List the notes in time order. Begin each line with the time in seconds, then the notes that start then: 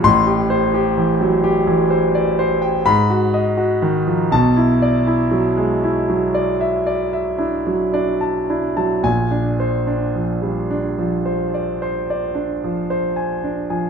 0.03 A1 A2 C6
0.27 G4
0.50 C5
0.74 G4
0.98 E3
1.21 F#3
1.44 G4
1.67 E3
1.90 C5
2.15 D5
2.39 C5
2.62 G5
2.86 G#2 B5
3.10 F#4
3.34 D#5
3.57 F#4
3.82 D#3
4.07 F3
4.31 B1 B2 A5
4.57 E4
4.82 D5
5.07 E4
5.31 F#3
5.57 G#3
5.84 E4
6.10 F#3
6.34 D5
6.61 E5
6.86 D5
7.13 E5
7.38 D4 E4
7.67 F#3
7.94 D4 D5
8.21 A5
8.49 D4 E4
8.77 F#3 A5
9.03 A#1 A#2 G#5
9.31 D4
9.60 C5
9.87 D4
10.15 F3
10.42 G3
10.70 D4
10.99 F3
11.25 C5
11.54 D5
11.82 C5
12.10 D5
12.35 D4
12.64 F3
12.90 C5
13.16 G#5
13.44 D4
13.70 F3 G#5